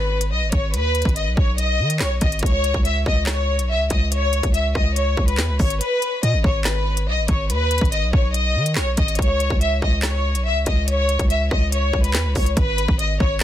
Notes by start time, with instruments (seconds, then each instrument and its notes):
Already playing: 808-style bass G#1, violin section B4
0.21 closed hi-hat
0.31 808-style bass B1, violin section D#5
0.42 808-style bass G#1
0.52 808-style bass G#1, violin section C#5, kick, closed hi-hat
0.74 808-style bass D#2, violin section B4, closed hi-hat
0.95 closed hi-hat
1.02 808-style bass G#1, kick, closed hi-hat
1.09 closed hi-hat
1.16 violin section D#5, closed hi-hat
1.26 808-style bass B1
1.37 808-style bass B1, violin section C#5, kick
1.58 violin section D#5, closed hi-hat
1.79 808-style bass D#3
1.90 closed hi-hat
2.00 808-style bass B1, violin section C#5, snare, clap, closed hi-hat
2.21 808-style bass G#1, violin section D#5, kick, closed hi-hat
2.32 closed hi-hat
2.39 808-style bass C#2, violin section C#5, kick, closed hi-hat
2.46 closed hi-hat
2.64 closed hi-hat
2.74 808-style bass C#2, kick
2.85 violin section E5, closed hi-hat
3.06 808-style bass C#2, violin section D#5, kick
3.27 violin section C#5, snare, clap, closed hi-hat
3.59 808-style bass B1, closed hi-hat
3.69 violin section E5
3.75 808-style bass C#2
3.90 808-style bass C#2, violin section D#5, kick, closed hi-hat
4.12 violin section C#5, closed hi-hat
4.33 closed hi-hat
4.43 808-style bass C#2, kick, closed hi-hat
4.54 violin section E5, closed hi-hat
4.75 808-style bass C#2, violin section D#5, kick, cross-stick
4.96 violin section C#5, closed hi-hat
5.17 808-style bass C#2, kick
5.28 violin section B4, closed hi-hat
5.38 808-style bass E2, snare, clap, closed hi-hat
5.49 808-style bass C#2
5.59 808-style bass G#1, violin section C#5, kick, open hi-hat
5.70 closed hi-hat
5.81 violin section B4, closed hi-hat
6.02 closed hi-hat
6.23 808-style bass B2, violin section D#5, closed hi-hat
6.34 808-style bass G#1
6.44 808-style bass G#1, violin section C#5, kick
6.65 violin section B4, snare, clap, closed hi-hat
6.97 closed hi-hat
7.08 808-style bass B1, violin section D#5
7.18 808-style bass G#1
7.28 808-style bass G#1, violin section C#5, kick, closed hi-hat
7.50 808-style bass D#2, violin section B4, closed hi-hat
7.71 closed hi-hat
7.78 808-style bass G#1, kick, closed hi-hat
7.85 closed hi-hat
7.92 violin section D#5, closed hi-hat
8.03 808-style bass B1
8.13 808-style bass B1, violin section C#5, kick
8.34 violin section D#5, closed hi-hat
8.55 808-style bass D#3
8.66 closed hi-hat
8.76 808-style bass B1, violin section C#5, snare, clap, closed hi-hat
8.97 808-style bass G#1, violin section D#5, kick, closed hi-hat
9.08 closed hi-hat
9.15 808-style bass C#2, violin section C#5, kick, closed hi-hat
9.22 closed hi-hat
9.40 closed hi-hat
9.50 808-style bass C#2, kick
9.61 violin section E5, closed hi-hat
9.82 808-style bass C#2, violin section D#5, kick
10.03 violin section C#5, snare, clap, closed hi-hat
10.35 808-style bass B1, closed hi-hat
10.45 violin section E5
10.51 808-style bass C#2
10.66 808-style bass C#2, violin section D#5, kick, closed hi-hat
10.88 violin section C#5, closed hi-hat
11.09 closed hi-hat
11.19 808-style bass C#2, kick, closed hi-hat
11.30 violin section E5, closed hi-hat
11.51 808-style bass C#2, violin section D#5, kick, cross-stick
11.72 violin section C#5, closed hi-hat
11.93 808-style bass C#2, kick
12.04 violin section B4, closed hi-hat
12.14 808-style bass E2, snare, clap, closed hi-hat
12.25 808-style bass C#2
12.35 808-style bass C#2, violin section C#5, kick, open hi-hat
12.46 closed hi-hat
12.57 808-style bass G#1, violin section B4, kick, closed hi-hat
12.78 closed hi-hat
12.88 808-style bass G#1, kick
12.99 violin section D#5, closed hi-hat
13.20 808-style bass G#1, violin section C#5, kick